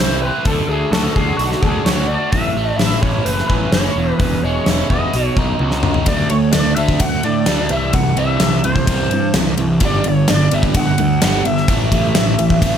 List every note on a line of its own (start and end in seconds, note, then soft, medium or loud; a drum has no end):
0.00 0.29 C2 medium
0.00 0.46 E3 medium
0.00 0.23 C4 medium
0.00 0.46 E4 medium
0.00 0.20 C5 medium
0.22 0.47 C4 medium
0.22 0.46 B4 medium
0.45 0.61 D2 medium
0.45 1.40 D3 medium
0.45 0.69 A4 medium
0.45 kick medium
0.45 open hi-hat soft
0.68 0.84 D2 medium
0.68 1.87 A3 medium
0.68 0.91 G#4 medium
0.91 1.07 D2 medium
0.91 1.87 F#4 medium
0.91 1.14 A4 medium
0.91 snare loud
0.91 open hi-hat soft
1.14 1.31 D2 medium
1.14 1.63 D4 medium
1.14 1.39 G#4 medium
1.14 kick medium
1.37 1.54 B1 medium
1.37 1.62 F#4 medium
1.37 open hi-hat soft
1.41 2.34 D3 medium
1.52 snare soft
1.61 1.78 D2 medium
1.61 2.10 D4 medium
1.61 1.86 G#4 medium
1.61 kick medium
1.84 2.16 D2 medium
1.84 2.34 F#4 medium
1.84 2.08 C#5 medium
1.84 snare loud
1.84 open hi-hat soft
2.08 2.34 D4 medium
2.08 2.32 D5 medium
2.32 2.48 A1 medium
2.32 3.50 A2 medium
2.32 2.77 E5 medium
2.32 kick medium
2.32 open hi-hat soft
2.55 2.71 A1 medium
2.55 3.74 A3 medium
2.78 2.94 A1 medium
2.78 3.73 E4 medium
2.78 3.02 E5 medium
2.78 snare medium
2.78 open hi-hat soft
3.02 3.18 A1 medium
3.02 3.49 C#4 medium
3.02 3.27 C#5 medium
3.02 kick medium
3.25 3.41 F#1 medium
3.25 3.97 E3 medium
3.25 3.47 B4 medium
3.25 open hi-hat medium
3.38 snare soft
3.48 3.65 A1 medium
3.48 3.97 C#4 medium
3.48 3.73 B4 medium
3.48 kick medium
3.72 3.88 F#1 medium
3.72 3.97 E4 medium
3.72 4.21 C#5 medium
3.72 snare loud
3.72 open hi-hat soft
3.96 4.11 E1 medium
3.96 4.20 E2 medium
4.19 4.35 E1 medium
4.19 5.14 E2 medium
4.19 4.43 B4 medium
4.19 kick medium
4.19 open hi-hat soft
4.42 4.58 E1 medium
4.42 5.14 G#3 medium
4.42 4.90 C#5 medium
4.66 4.82 E1 medium
4.66 5.15 E4 medium
4.66 snare medium
4.66 open hi-hat soft
4.90 5.05 E1 medium
4.90 5.15 B3 medium
4.90 5.34 D#5 medium
4.90 kick medium
5.13 5.29 B1 medium
5.13 6.08 B2 medium
5.13 open hi-hat soft
5.36 5.52 B1 medium
5.36 5.84 D#4 medium
5.36 kick medium
5.59 5.90 C#2 medium
5.59 6.08 F#4 medium
5.59 high tom medium
5.71 snare medium
5.83 6.08 D#4 medium
5.83 mid tom medium
5.94 floor tom medium
6.06 6.27 D2 medium
6.06 6.29 D3 medium
6.06 6.30 A3 medium
6.06 6.30 D4 medium
6.06 6.30 D5 medium
6.06 kick loud
6.06 ride medium
6.30 6.50 D2 medium
6.30 6.52 D3 medium
6.30 6.52 A3 medium
6.30 6.52 C#5 medium
6.30 ride medium
6.53 6.74 D2 medium
6.53 6.75 D3 medium
6.53 6.75 A3 medium
6.53 6.75 D5 medium
6.53 snare loud
6.53 ride medium
6.76 6.97 D2 medium
6.76 6.99 D3 medium
6.76 7.00 A3 medium
6.76 7.00 D4 medium
6.76 7.01 E5 medium
6.76 ride medium
6.89 kick medium
7.00 7.20 D2 medium
7.00 7.22 D3 medium
7.00 7.22 A3 medium
7.00 7.24 F#5 loud
7.00 kick loud
7.00 ride medium
7.23 7.43 A2 medium
7.23 7.46 D3 medium
7.23 7.46 A3 medium
7.23 7.71 D5 medium
7.23 ride medium
7.46 7.67 D2 medium
7.46 7.69 D3 medium
7.46 7.70 A3 medium
7.46 7.70 D4 medium
7.46 snare loud
7.46 ride medium
7.69 7.90 C2 medium
7.69 7.92 C3 medium
7.69 7.93 E3 medium
7.69 7.93 G3 medium
7.69 7.95 E5 medium
7.69 ride medium
7.93 8.14 C2 medium
7.93 8.15 C3 medium
7.93 8.15 E3 medium
7.93 8.18 F#5 medium
7.93 kick medium
7.93 ride medium
8.16 8.37 C2 medium
8.16 8.39 C3 medium
8.16 8.39 E3 medium
8.16 8.39 G3 loud
8.16 8.65 E5 medium
8.16 ride medium
8.40 8.60 C2 medium
8.40 8.62 C3 medium
8.40 8.62 E3 medium
8.40 snare loud
8.40 ride medium
8.64 8.84 C2 medium
8.64 8.86 C3 medium
8.64 8.86 E3 medium
8.64 9.31 C5 medium
8.64 ride medium
8.76 kick medium
8.87 9.07 C2 medium
8.87 9.10 C3 medium
8.87 9.11 E3 loud
8.87 9.11 G3 medium
8.87 kick loud
8.87 ride medium
9.11 9.31 G2 medium
9.11 9.33 C3 medium
9.11 9.33 E3 medium
9.11 ride medium
9.34 9.54 C2 medium
9.34 9.56 C3 medium
9.34 9.56 E3 medium
9.34 snare loud
9.34 ride medium
9.57 9.77 C2 medium
9.57 9.79 C3 medium
9.57 9.80 E3 medium
9.57 ride medium
9.80 10.01 G1 medium
9.80 10.04 G2 medium
9.80 10.04 D3 medium
9.80 10.04 G3 medium
9.80 kick loud
9.80 ride medium
9.85 10.07 D5 medium
10.04 10.24 G1 medium
10.04 10.26 G2 medium
10.04 10.27 D3 medium
10.04 ride medium
10.09 10.28 C#5 medium
10.28 10.48 G1 medium
10.28 10.49 G2 medium
10.28 10.50 D3 medium
10.28 10.53 D5 medium
10.28 snare loud
10.28 ride medium
10.51 10.71 G1 medium
10.51 10.73 G2 medium
10.51 10.74 D3 medium
10.51 10.74 G3 loud
10.51 10.60 E5 loud
10.51 ride medium
10.63 kick medium
10.74 10.94 G1 medium
10.74 10.96 G2 medium
10.74 10.97 D3 medium
10.74 11.22 F#5 loud
10.74 kick loud
10.74 ride loud
10.98 11.18 D2 medium
10.98 11.19 G2 medium
10.98 11.20 D3 medium
10.98 ride medium
11.22 11.41 G1 medium
11.22 11.43 G2 medium
11.22 11.44 D3 medium
11.22 11.44 G3 medium
11.22 11.44 F#5 medium
11.22 snare loud
11.22 ride loud
11.45 11.65 G1 medium
11.45 11.66 G2 medium
11.45 11.67 D3 medium
11.45 12.78 E5 loud
11.45 ride medium
11.57 snare soft
11.68 11.88 A1 loud
11.68 11.90 A2 medium
11.68 11.91 E3 medium
11.68 11.91 A3 loud
11.68 kick loud
11.68 ride medium
11.92 12.11 A1 medium
11.92 12.14 A2 medium
11.92 12.14 E3 loud
11.92 12.14 A3 loud
11.92 kick medium
11.92 ride medium
12.15 12.35 A1 medium
12.15 12.36 A2 medium
12.15 12.36 E3 medium
12.15 snare loud
12.15 ride medium
12.39 12.58 A1 medium
12.39 12.59 A2 medium
12.39 12.60 E3 medium
12.39 ride medium
12.50 kick medium
12.62 12.78 A1 medium
12.62 12.78 A2 medium
12.62 12.78 E3 medium
12.62 12.78 A3 medium
12.62 kick loud
12.62 ride loud